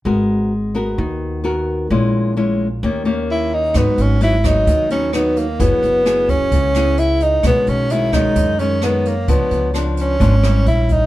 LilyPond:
<<
  \new Staff \with { instrumentName = "Tenor saxophone" } { \time 4/4 \key gis \minor \tempo 4 = 130 r1 | r2. e'8 dis'8 | b8 cis'8 e'8 dis'4 cis'8 b8 ais8 | b4. cis'4. e'8 dis'8 |
b8 cis'8 e'8 dis'4 cis'8 b8 ais8 | b4 r8 cis'4. e'8 dis'8 | }
  \new Staff \with { instrumentName = "Nylon-string guitar" } { \time 4/4 \key gis \minor << { <b fis' ais'>4 r8 <b fis' ais'>4. <b fis' ais'>4 | <gis cis' e'>4 <gis cis' e'>8 r8 <ais cis' g'>8 <ais cis' g'>4. | <fis b dis'>4 <fis b dis'>8 <fis b dis'>4 <fis b dis'>8 <fis b dis'>8 r8 | <b e' gis'>4 <b e' gis'>4. <b e' gis'>4. |
<dis gis cis'>4 <dis gis cis'>8 <dis gis cis'>4 <dis gis cis'>8 <dis gis cis'>8 r8 | <eis b d'>4 <eis b d'>4 <eis b d'>8 <g cis' e'>4. | } \\ { gis2 dis2 | ais,2 dis2 | gis,2 dis2 | fis2 cis2 |
b,2 fis,2 | cis2 gis,4 r4 | } >> }
  \new Staff \with { instrumentName = "Upright bass" } { \clef bass \time 4/4 \key gis \minor gis,,2 dis,2 | ais,,2 dis,2 | gis,,16 r16 gis,,4. dis,2 | fis,,16 r16 fis,,4. cis,2 |
b,,16 r16 b,,4. fis,2 | cis,16 r16 cis,4. gis,,4 ais,,4 | }
  \new DrumStaff \with { instrumentName = "Drums" } \drummode { \time 4/4 r4 r4 r4 r4 | r4 r4 r4 r4 | <hh bd ss>8 hh8 hh8 <hh bd ss>8 <hh bd>8 hh8 <hh ss>8 hh8 | <hh bd>8 hh8 <hh ss>8 <hh bd>8 <hh bd>8 <hh ss>8 hh8 hh8 |
<hh bd ss>8 hh8 hh8 <hh bd ss>8 <hh bd>8 hh8 <hh ss>8 hh8 | <hh bd>8 hh8 <hh ss>8 hh8 <hh bd>8 <hh ss>8 hh8 <hh bd>8 | }
>>